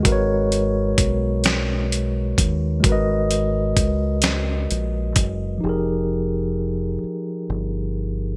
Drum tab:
HH |xxxxxx|xxxxxx|------|
SD |---o--|---o--|------|
BD |o-o--o|o-o--o|------|